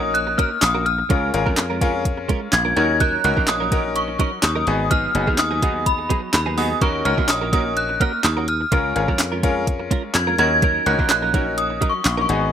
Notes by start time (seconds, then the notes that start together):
Already playing: A#1 C#4 D#4 F#4 A#4 D#6
0.03 muted clean electric guitar stroke
0.14 F#6, closed hi-hat
0.27 muted clean electric guitar stroke
0.38 A#3 C#4 F#4 A#4 F6, kick, closed hi-hat
0.51 muted clean electric guitar stroke
0.61 A#1 D#6, muted clean electric guitar stroke, snare, clap, closed hi-hat
0.74 A#3 C#4 F#4 A#4
0.86 F6, muted clean electric guitar stroke, closed hi-hat
0.98 muted clean electric guitar stroke
1.09 C#2 G#3 C#4 F4 G#4 A#4, kick, closed hi-hat
1.33 G#1 C#4 F4 G#4 A#4, muted clean electric guitar stroke, closed hi-hat
1.46 F2 G#3 C#4 F4 A#4, kick
1.56 muted clean electric guitar stroke, snare, clap, closed hi-hat
1.70 G#3 C#4 F4 A#4
1.81 G#3 C#4 F4 G#4 A#4, kick, closed hi-hat
1.94 muted clean electric guitar stroke
2.05 kick, closed hi-hat
2.17 muted clean electric guitar stroke
2.28 G#3 C#4 F4 A#4, kick, closed hi-hat
2.41 muted clean electric guitar stroke
2.52 A#1 G#6, muted clean electric guitar stroke, snare, clap, closed hi-hat
2.65 G#3 C#4 F4 A#4
2.76 D#2 F#3 C#4 D#4 F#4 A#4 G#6, closed hi-hat
2.89 muted clean electric guitar stroke
3.00 F#3 C#4 D#4 A#4 F#6, kick, closed hi-hat
3.24 C#2 C#4 D#4 F#4 A#4 F#6, closed hi-hat
3.36 A#1 F#3 C#4 D#4 A#4, kick
3.47 D#6, muted clean electric guitar stroke, snare, clap, closed hi-hat
3.60 F#3 C#4 D#4 A#4
3.71 F#3 C#4 D#4 F#4 A#4, kick, closed hi-hat
3.84 muted clean electric guitar stroke
3.96 C#6, closed hi-hat
4.08 muted clean electric guitar stroke
4.19 F#3 C#4 D#4 A#4 C#6, kick, closed hi-hat
4.32 muted clean electric guitar stroke
4.42 D#2 D#6, snare, clap, closed hi-hat
4.55 F#3 C#4 D#4 A#4
4.67 G#1 B3 D#4 F#4 G#4, muted clean electric guitar stroke, closed hi-hat
4.79 muted clean electric guitar stroke
4.90 F#3 B3 D#4 G#4 F6, kick, closed hi-hat
5.14 F#1 B3 D#4 F#4 G#4, muted clean electric guitar stroke, closed hi-hat
5.27 D#2 F#3 B3 D#4 G#4, kick
5.37 D#6, muted clean electric guitar stroke, snare, clap, closed hi-hat
5.51 F#3 B3 D#4 G#4
5.62 F#3 B3 D#4 F#4 G#4, kick, closed hi-hat
5.75 muted clean electric guitar stroke
5.86 B5, kick, closed hi-hat
5.99 muted clean electric guitar stroke
6.09 F#3 B3 D#4 G#4, kick, closed hi-hat
6.22 muted clean electric guitar stroke
6.33 D#2 B5, muted clean electric guitar stroke, snare, clap, closed hi-hat
6.46 F#3 B3 D#4 G#4
6.57 F#3 B3 D#4 F#4 G#4 D#6, open hi-hat
6.70 muted clean electric guitar stroke
6.81 D#2 A#3 C#4 D#4 F#4 A#4 C#6, kick, closed hi-hat
7.05 C#2 C#4 D#4 F#4 A#4 F6, muted clean electric guitar stroke, closed hi-hat
7.17 A#1 A#3 C#4 F#4 A#4, kick
7.28 D#6, muted clean electric guitar stroke, snare, clap, closed hi-hat
7.41 A#3 C#4 F#4 A#4
7.53 A#3 C#4 D#4 F#4 A#4 D#6, kick, closed hi-hat
7.65 muted clean electric guitar stroke
7.77 F#6, closed hi-hat
7.89 muted clean electric guitar stroke
8.00 A#3 C#4 F#4 A#4 F6, kick, closed hi-hat
8.13 muted clean electric guitar stroke
8.23 D#2 D#6, muted clean electric guitar stroke, snare, clap, closed hi-hat
8.37 A#3 C#4 F#4 A#4
8.48 F6, muted clean electric guitar stroke, closed hi-hat
8.60 muted clean electric guitar stroke
8.72 C#2 G#3 C#4 F4 G#4 A#4, kick, closed hi-hat
8.95 G#1 C#4 F4 G#4 A#4, muted clean electric guitar stroke, closed hi-hat
9.08 F2 G#3 C#4 F4 A#4, kick
9.18 muted clean electric guitar stroke, snare, clap, closed hi-hat
9.32 G#3 C#4 F4 A#4
9.43 G#3 C#4 F4 G#4 A#4, kick, closed hi-hat
9.56 muted clean electric guitar stroke
9.67 kick, closed hi-hat
9.80 muted clean electric guitar stroke
9.91 G#3 C#4 F4 A#4, kick, closed hi-hat
10.04 muted clean electric guitar stroke
10.14 F2 G#6, muted clean electric guitar stroke, snare, clap, closed hi-hat
10.27 G#3 C#4 F4 A#4
10.38 D#2 F#3 C#4 D#4 F#4 A#4 G#6, closed hi-hat
10.51 muted clean electric guitar stroke
10.62 F#3 C#4 D#4 A#4, kick, closed hi-hat
10.86 C#2 C#4 D#4 F#4 A#4 F#6, muted clean electric guitar stroke, closed hi-hat
10.99 A#1 F#3 C#4 D#4 A#4, kick
11.09 F#6, muted clean electric guitar stroke, snare, clap, closed hi-hat
11.22 F#3 C#4 D#4 A#4
11.34 F#3 C#4 D#4 F#4 A#4, kick, closed hi-hat
11.46 muted clean electric guitar stroke
11.58 D#6, closed hi-hat
11.70 muted clean electric guitar stroke
11.81 F#3 C#4 D#4 A#4, kick, closed hi-hat
11.89 C#6
11.94 muted clean electric guitar stroke
12.04 A#1, muted clean electric guitar stroke, snare, clap, closed hi-hat
12.17 F#3 C#4 D#4 A#4 C#6
12.29 G#1 B3 D#4 F#4 G#4, closed hi-hat
12.41 muted clean electric guitar stroke